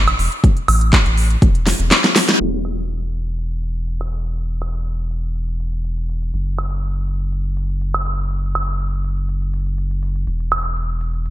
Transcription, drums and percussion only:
0.08 closed hi-hat, high woodblock
0.19 open hi-hat
0.32 closed hi-hat
0.44 kick, closed hi-hat
0.57 closed hi-hat
0.68 open hi-hat, high woodblock
0.81 closed hi-hat
0.93 kick, clap, closed hi-hat
1.06 closed hi-hat
1.17 open hi-hat
1.30 closed hi-hat
1.42 kick, closed hi-hat
1.55 closed hi-hat
1.67 snare, open hi-hat
1.80 closed hi-hat
1.91 snare, clap, closed hi-hat
2.04 snare, closed hi-hat
2.16 snare, open hi-hat
2.29 snare, closed hi-hat
2.65 open hi-hat, high woodblock
2.78 closed hi-hat
2.90 closed hi-hat
3.03 closed hi-hat
3.14 open hi-hat
3.27 closed hi-hat
3.39 closed hi-hat
3.52 closed hi-hat
3.63 open hi-hat
3.76 closed hi-hat
3.88 closed hi-hat
4.01 high woodblock
4.13 open hi-hat
4.26 closed hi-hat
4.37 closed hi-hat
4.50 closed hi-hat
4.62 open hi-hat, high woodblock
4.75 closed hi-hat
4.86 closed hi-hat
4.99 closed hi-hat
5.11 open hi-hat
5.24 closed hi-hat
5.36 closed hi-hat
5.49 closed hi-hat
5.60 open hi-hat
5.73 closed hi-hat
5.85 closed hi-hat
5.98 closed hi-hat
6.09 open hi-hat
6.22 closed hi-hat
6.34 closed hi-hat
6.47 closed hi-hat
6.58 open hi-hat, high woodblock
6.71 closed hi-hat
6.83 closed hi-hat
6.96 closed hi-hat
7.08 open hi-hat
7.21 closed hi-hat
7.32 closed hi-hat
7.45 closed hi-hat
7.57 open hi-hat
7.70 closed hi-hat
7.81 closed hi-hat
7.94 closed hi-hat, high woodblock
8.06 open hi-hat
8.19 closed hi-hat
8.31 closed hi-hat
8.44 closed hi-hat
8.55 open hi-hat, high woodblock
8.68 closed hi-hat
8.80 closed hi-hat
8.93 closed hi-hat
9.04 open hi-hat
9.17 closed hi-hat
9.29 closed hi-hat
9.42 closed hi-hat
9.54 open hi-hat
9.66 closed hi-hat
9.78 closed hi-hat
9.91 closed hi-hat
10.03 open hi-hat
10.16 closed hi-hat
10.27 closed hi-hat
10.40 closed hi-hat
10.52 open hi-hat, high woodblock
10.65 closed hi-hat
10.76 closed hi-hat
10.89 closed hi-hat
11.01 open hi-hat
11.14 closed hi-hat
11.26 closed hi-hat

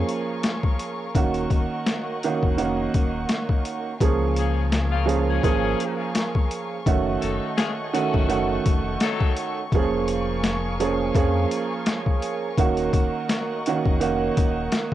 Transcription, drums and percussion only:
0.09 closed hi-hat
0.43 snare, closed hi-hat
0.63 kick
0.79 closed hi-hat
1.15 kick, closed hi-hat
1.34 closed hi-hat
1.50 kick, closed hi-hat
1.86 snare, closed hi-hat
2.23 closed hi-hat
2.43 kick
2.58 closed hi-hat
2.94 kick, closed hi-hat
3.29 snare, closed hi-hat
3.49 kick
3.65 closed hi-hat
4.01 kick, closed hi-hat
4.36 closed hi-hat
4.72 snare, closed hi-hat
5.09 closed hi-hat
5.43 kick, closed hi-hat
5.80 closed hi-hat
6.15 snare, closed hi-hat
6.35 kick
6.51 closed hi-hat
6.86 kick, closed hi-hat
7.22 closed hi-hat
7.58 snare, closed hi-hat
7.95 closed hi-hat
8.14 kick
8.30 closed hi-hat
8.66 kick, closed hi-hat
9.00 snare, closed hi-hat
9.21 kick
9.36 closed hi-hat
9.72 kick, closed hi-hat
10.08 closed hi-hat
10.44 snare, closed hi-hat
10.80 closed hi-hat
11.15 kick, closed hi-hat
11.51 closed hi-hat
11.86 snare, closed hi-hat
12.06 kick
12.22 closed hi-hat
12.58 kick, closed hi-hat
12.77 closed hi-hat
12.93 kick, closed hi-hat
13.29 snare, closed hi-hat
13.66 closed hi-hat
13.85 kick
14.01 closed hi-hat
14.37 kick, closed hi-hat
14.72 snare, closed hi-hat

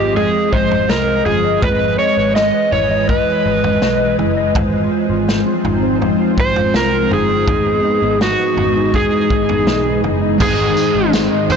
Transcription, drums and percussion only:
0.16 floor tom
0.53 kick
0.71 floor tom
0.89 snare
1.26 floor tom
1.62 kick, floor tom
2.36 snare
2.72 floor tom
3.09 kick, floor tom
3.64 floor tom
3.82 snare
4.19 floor tom
4.55 kick, floor tom
5.29 snare
5.65 floor tom
6.02 floor tom
6.38 kick
6.56 floor tom
6.74 snare
7.11 floor tom
7.48 kick, floor tom
8.21 snare
8.57 floor tom
8.94 kick, floor tom
9.30 kick
9.49 floor tom
9.67 snare
10.04 floor tom
10.40 kick, floor tom, crash, tambourine
10.77 tambourine
11.13 snare, tambourine
11.50 floor tom, tambourine

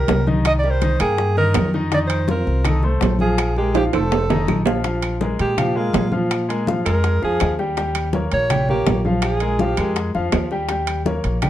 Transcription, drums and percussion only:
0.08 high bongo, low bongo, high conga, high timbale, low timbale
0.27 high bongo, high conga
0.45 high bongo, high conga, high timbale, claves
0.64 high bongo, high conga
0.82 high bongo, high conga, high timbale
1.00 high timbale, claves
1.18 high bongo, high conga
1.37 high bongo, high conga
1.54 high bongo, low bongo, high conga, high timbale, low timbale, claves
1.73 high bongo, high conga
1.91 high bongo, high conga, high timbale
2.10 high conga, high timbale, claves
2.28 high bongo, high conga
2.46 high bongo, high conga
2.65 high bongo, high conga, low conga, high timbale, claves
2.83 high bongo, high conga
3.01 high bongo, low bongo, high conga, high timbale, low timbale
3.19 high bongo, high conga
3.38 high bongo, high conga, high timbale, claves
3.56 high bongo, high conga
3.74 high bongo, high conga, high timbale
3.93 high timbale, claves
4.11 high bongo, high conga, low timbale
4.30 high bongo, high conga, low timbale
4.48 high bongo, high conga, claves
4.66 low bongo, low timbale
4.84 high bongo, high conga, high timbale
5.03 high conga, high timbale, claves
5.21 high bongo, high conga
5.39 high timbale
5.58 high bongo, high conga, low conga, high timbale, claves
5.76 high conga
5.93 high bongo, low bongo, high conga, high timbale, low timbale
6.12 high conga
6.30 high bongo, high conga, high timbale, claves
6.49 high conga, high timbale
6.67 high bongo, high conga
6.86 high bongo, high timbale, claves
7.04 high bongo, high conga, high timbale
7.23 high bongo, high conga
7.40 high bongo, low bongo, high conga, high timbale, claves
7.59 high bongo, high conga
7.77 high bongo, high conga, high timbale
7.95 high conga, high timbale, claves
8.13 high bongo, high conga
8.32 high timbale
8.50 high bongo, high conga, low conga, high timbale, claves
8.69 high conga, low conga
8.87 high bongo, low bongo, high conga, high timbale, low timbale
9.05 high conga
9.22 high bongo, high conga, high timbale, claves
9.40 high conga, high timbale
9.59 high bongo, high conga
9.77 high bongo, high conga, high timbale, claves
9.96 high bongo, high conga, high timbale
10.14 high bongo, high conga
10.32 high bongo, low bongo, high conga, high timbale, low timbale, claves
10.51 high bongo, high conga
10.69 high bongo, high conga, high timbale
10.87 high conga, high timbale, claves
11.06 high bongo, high conga
11.24 high timbale
11.42 high bongo, high conga, low conga, high timbale, claves

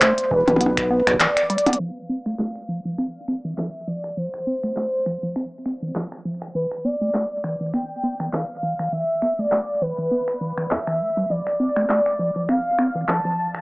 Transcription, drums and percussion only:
0.01 finger snap, kick, clap, closed hi-hat
0.18 closed hi-hat
0.31 kick
0.48 closed hi-hat, percussion blips
0.56 percussion blips
0.61 closed hi-hat
0.66 percussion blips
0.77 finger snap, kick, closed hi-hat
1.07 finger snap, closed hi-hat
1.14 kick
1.20 clap, closed hi-hat
1.37 finger snap, closed hi-hat
1.50 closed hi-hat
1.58 closed hi-hat
1.66 closed hi-hat, percussion blips
1.73 closed hi-hat
2.26 finger snap
2.39 clap
2.56 finger snap
2.98 finger snap
3.28 finger snap
3.58 finger snap, clap
4.04 finger snap
4.34 finger snap
4.63 finger snap
4.77 clap
5.06 finger snap
5.36 finger snap
5.66 finger snap
5.95 clap
6.12 finger snap
6.42 finger snap
6.71 finger snap
7.14 finger snap, clap
7.44 finger snap
7.74 finger snap
8.20 finger snap
8.33 clap
8.79 finger snap
9.22 finger snap
9.52 finger snap, clap
10.28 finger snap
10.58 finger snap
10.71 clap
10.87 finger snap
11.47 finger snap
11.76 finger snap
11.89 clap
12.06 finger snap
12.49 finger snap
12.79 finger snap
13.08 finger snap, clap
13.55 finger snap

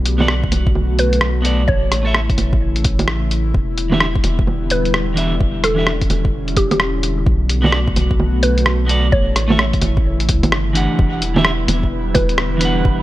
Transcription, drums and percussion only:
0.06 closed hi-hat
0.20 low bongo
0.28 cross-stick
0.44 kick
0.52 closed hi-hat, low bongo
0.67 kick
0.75 low bongo
0.99 closed hi-hat
1.13 closed hi-hat
1.21 cross-stick
1.45 closed hi-hat
1.68 kick
1.92 cross-stick, closed hi-hat
2.14 cross-stick
2.30 kick, closed hi-hat
2.38 closed hi-hat, low bongo
2.53 kick
2.76 closed hi-hat
2.84 kick, closed hi-hat
2.99 closed hi-hat, low bongo
3.08 cross-stick
3.31 closed hi-hat
3.54 kick
3.78 closed hi-hat
3.92 low bongo
4.00 cross-stick
4.15 kick
4.24 closed hi-hat, low bongo
4.39 kick
4.47 low bongo
4.70 closed hi-hat
4.85 closed hi-hat
4.94 cross-stick
5.17 closed hi-hat
5.41 kick
5.64 cross-stick, closed hi-hat
5.87 cross-stick
6.01 kick, closed hi-hat
6.10 closed hi-hat, low bongo
6.25 kick
6.48 closed hi-hat
6.57 kick, closed hi-hat
6.71 closed hi-hat, low bongo
6.80 cross-stick
7.03 closed hi-hat
7.26 kick
7.49 closed hi-hat
7.64 low bongo
7.72 cross-stick
7.88 kick
7.96 closed hi-hat, low bongo
8.11 kick
8.20 low bongo
8.43 closed hi-hat
8.58 closed hi-hat
8.66 cross-stick
8.89 closed hi-hat
9.12 kick
9.36 cross-stick, closed hi-hat
9.50 low bongo
9.59 cross-stick
9.73 kick, closed hi-hat
9.82 closed hi-hat, low bongo
9.97 kick
10.20 closed hi-hat
10.29 kick, closed hi-hat
10.43 closed hi-hat, low bongo
10.52 cross-stick
10.75 closed hi-hat
10.99 kick
11.22 closed hi-hat
11.36 low bongo
11.45 cross-stick
11.68 closed hi-hat, low bongo
11.83 kick
12.15 kick, closed hi-hat, low bongo
12.29 closed hi-hat
12.38 cross-stick
12.61 closed hi-hat
12.85 kick

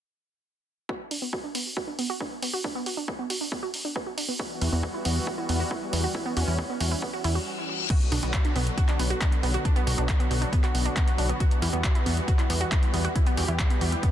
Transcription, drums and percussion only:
0.89 kick
1.11 open hi-hat
1.33 kick
1.55 open hi-hat
1.77 kick
1.99 open hi-hat
2.21 kick
2.43 open hi-hat
2.64 kick
2.86 open hi-hat
3.08 kick
3.30 open hi-hat
3.52 kick
3.74 open hi-hat
3.96 kick
4.18 open hi-hat
4.39 kick
4.62 open hi-hat
4.83 kick
5.05 open hi-hat
5.27 kick
5.49 open hi-hat
5.71 kick
5.93 open hi-hat
6.15 kick
6.37 open hi-hat
6.59 kick
6.80 open hi-hat
7.02 kick
7.24 open hi-hat
7.90 kick, closed hi-hat, crash
8.01 closed hi-hat
8.12 open hi-hat
8.23 closed hi-hat
8.34 kick, clap, closed hi-hat
8.45 closed hi-hat
8.56 open hi-hat
8.67 closed hi-hat
8.77 kick, closed hi-hat
8.89 clap, closed hi-hat
8.99 open hi-hat
9.10 closed hi-hat
9.21 kick, clap, closed hi-hat
9.32 closed hi-hat
9.43 open hi-hat
9.54 closed hi-hat
9.65 kick, closed hi-hat
9.76 closed hi-hat
9.87 open hi-hat
9.98 closed hi-hat
10.09 kick, clap, closed hi-hat
10.20 closed hi-hat
10.31 open hi-hat
10.42 closed hi-hat
10.53 kick, closed hi-hat
10.64 clap, closed hi-hat
10.75 open hi-hat
10.86 closed hi-hat
10.96 kick, clap, closed hi-hat
11.08 closed hi-hat
11.18 open hi-hat
11.29 closed hi-hat
11.40 kick, closed hi-hat
11.51 closed hi-hat
11.62 open hi-hat
11.73 closed hi-hat
11.84 kick, clap, closed hi-hat
11.95 closed hi-hat
12.06 open hi-hat
12.17 closed hi-hat
12.28 kick, closed hi-hat
12.39 clap, closed hi-hat
12.50 open hi-hat
12.61 closed hi-hat
12.72 kick, clap, closed hi-hat
12.83 closed hi-hat
12.94 open hi-hat
13.05 closed hi-hat
13.16 kick, closed hi-hat
13.26 closed hi-hat
13.37 open hi-hat
13.49 closed hi-hat
13.59 kick, clap, closed hi-hat
13.70 closed hi-hat
13.81 open hi-hat
13.92 closed hi-hat
14.03 kick, closed hi-hat

